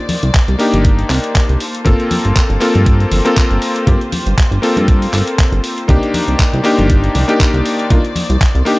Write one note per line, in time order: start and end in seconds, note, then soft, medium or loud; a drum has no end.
0.00 1.57 D#3 medium
0.00 5.85 A#3 medium
0.00 8.79 C5 medium
0.00 1.57 D5 medium
0.09 open hi-hat loud
0.09 high conga medium
0.23 0.30 C2 medium
0.23 closed hi-hat soft
0.34 kick loud
0.34 clap loud
0.34 closed hi-hat medium
0.48 0.56 C2 medium
0.48 closed hi-hat soft
0.59 1.59 A#3 medium
0.59 1.59 D4 medium
0.59 1.59 D#4 medium
0.59 1.60 G4 loud
0.59 open hi-hat loud
0.73 1.04 G1 medium
0.73 closed hi-hat soft
0.73 high conga medium
0.85 kick loud
0.85 closed hi-hat medium
0.99 closed hi-hat soft
1.10 1.19 C2 medium
1.10 clap medium
1.10 open hi-hat loud
1.24 closed hi-hat medium
1.35 kick loud
1.35 clap loud
1.35 closed hi-hat medium
1.49 1.56 C2 medium
1.49 closed hi-hat soft
1.60 5.85 F4 medium
1.60 3.60 A4 medium
1.60 open hi-hat loud
1.75 closed hi-hat soft
1.85 1.95 G1 loud
1.85 2.58 A#3 medium
1.85 2.58 C4 medium
1.85 2.59 F4 medium
1.85 2.59 A4 loud
1.85 kick loud
1.85 closed hi-hat medium
1.85 low conga medium
2.00 closed hi-hat soft
2.11 open hi-hat loud
2.11 high conga medium
2.25 2.32 G1 medium
2.25 closed hi-hat soft
2.36 kick loud
2.36 clap loud
2.36 closed hi-hat medium
2.50 2.57 G1 loud
2.50 closed hi-hat soft
2.60 3.22 A#3 medium
2.60 3.22 C4 medium
2.60 3.22 F4 medium
2.60 3.23 A4 loud
2.60 clap medium
2.60 open hi-hat loud
2.75 3.05 G2 medium
2.75 closed hi-hat soft
2.75 high conga medium
2.86 kick loud
2.86 closed hi-hat medium
3.00 closed hi-hat soft
3.12 3.21 G1 medium
3.12 open hi-hat loud
3.12 high conga medium
3.25 3.84 A#3 loud
3.25 3.84 C4 medium
3.25 3.85 F4 medium
3.25 3.85 A4 loud
3.25 closed hi-hat soft
3.37 kick loud
3.37 clap loud
3.37 closed hi-hat medium
3.51 3.58 G1 medium
3.51 closed hi-hat soft
3.62 5.87 G4 medium
3.62 open hi-hat loud
3.76 closed hi-hat soft
3.87 3.96 G1 loud
3.87 3.97 A#3 medium
3.87 3.97 C4 medium
3.87 3.97 F4 medium
3.87 3.98 G4 medium
3.87 kick loud
3.87 closed hi-hat medium
3.87 low conga medium
4.01 closed hi-hat soft
4.12 open hi-hat loud
4.12 high conga medium
4.26 4.34 G1 medium
4.26 closed hi-hat soft
4.38 kick loud
4.38 clap loud
4.38 closed hi-hat medium
4.51 4.59 G1 medium
4.51 closed hi-hat soft
4.62 5.86 A#3 medium
4.62 5.86 C4 medium
4.62 5.86 F4 medium
4.62 5.87 A4 medium
4.62 open hi-hat loud
4.76 5.07 G2 medium
4.76 closed hi-hat soft
4.76 high conga medium
4.88 kick loud
4.88 closed hi-hat medium
5.02 open hi-hat medium
5.13 5.22 G1 medium
5.13 clap medium
5.13 open hi-hat loud
5.27 closed hi-hat medium
5.38 kick loud
5.38 clap loud
5.38 closed hi-hat medium
5.52 5.60 G1 medium
5.52 closed hi-hat soft
5.64 open hi-hat loud
5.78 closed hi-hat soft
5.88 5.98 C2 medium
5.88 8.79 D#3 medium
5.88 6.61 A#3 medium
5.88 8.79 A#3 medium
5.88 6.62 D4 medium
5.88 6.62 D#4 medium
5.88 6.62 G4 loud
5.88 8.79 D5 medium
5.88 kick loud
5.88 closed hi-hat medium
5.88 low conga medium
6.03 closed hi-hat soft
6.14 open hi-hat loud
6.14 high conga medium
6.28 6.35 C2 medium
6.28 closed hi-hat soft
6.39 kick loud
6.39 clap loud
6.39 closed hi-hat medium
6.53 6.61 C2 medium
6.53 closed hi-hat soft
6.64 7.25 A#3 loud
6.64 7.25 D4 medium
6.64 7.26 D#4 medium
6.64 7.26 G4 loud
6.64 clap medium
6.64 open hi-hat loud
6.78 7.09 G1 medium
6.78 closed hi-hat soft
6.78 high conga medium
6.90 kick loud
6.90 closed hi-hat medium
7.04 closed hi-hat soft
7.15 7.24 C2 medium
7.15 open hi-hat loud
7.15 high conga medium
7.28 7.87 A#3 medium
7.28 7.88 D4 medium
7.28 7.88 D#4 medium
7.28 7.88 G4 loud
7.28 closed hi-hat medium
7.40 kick loud
7.40 clap loud
7.40 closed hi-hat medium
7.54 7.61 C2 medium
7.54 closed hi-hat soft
7.66 open hi-hat loud
7.79 closed hi-hat soft
7.90 8.00 C2 loud
7.90 8.01 A#3 medium
7.90 8.01 D4 medium
7.90 8.01 D#4 medium
7.90 8.01 F4 medium
7.90 kick loud
7.90 closed hi-hat medium
7.90 low conga medium
8.05 closed hi-hat soft
8.16 open hi-hat loud
8.16 high conga medium
8.30 8.37 C2 medium
8.30 closed hi-hat soft
8.41 kick loud
8.41 clap loud
8.41 closed hi-hat medium
8.55 8.62 C2 loud
8.55 closed hi-hat soft
8.65 8.79 A#3 medium
8.65 8.79 D4 medium
8.65 8.79 D#4 medium
8.65 8.79 G4 loud
8.65 open hi-hat loud